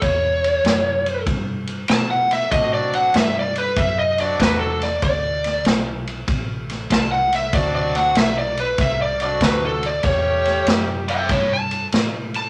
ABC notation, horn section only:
X:1
M:4/4
L:1/8
Q:"Swing" 1/4=96
K:D
V:1 name="Horn section"
z8 | [F,=CDF]2 z3 [F,CDF]2 z | z8 | [F,=CDF]2 z3 [F,CDF]2 z |
[G,A,CG]3 z4 z |]